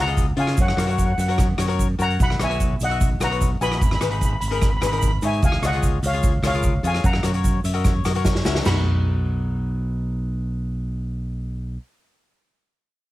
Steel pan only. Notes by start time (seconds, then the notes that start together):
0.00 F#5 A#5
0.39 F5 G#5
0.61 C#5 F#5
0.67 F#5
0.75 F#5
0.82 F#5
0.90 F#5
0.99 F#5
1.05 F#5
1.12 F#5
1.20 F#5
1.28 F#5
2.02 F#5 A#5
2.22 F#5 B5
2.43 E5 G#5
2.83 D#5 F#5
3.23 F#5 A#5
3.61 G#5 B5
3.71 B5
3.78 B5
3.86 B5
3.94 B5
4.04 B5
4.11 B5
4.19 B5
4.25 B5
4.33 B5
4.41 B5
4.48 B5
4.54 B5
4.63 B5
4.70 B5
4.77 B5
4.87 B5
4.93 B5
4.99 B5
5.08 B5
5.25 E5 G#5
5.44 F5 G#5
5.65 D#5 F#5
6.06 C#5 F5
6.46 C#5 F5
6.86 F5 G#5
7.05 F#5 A#5
8.66 B5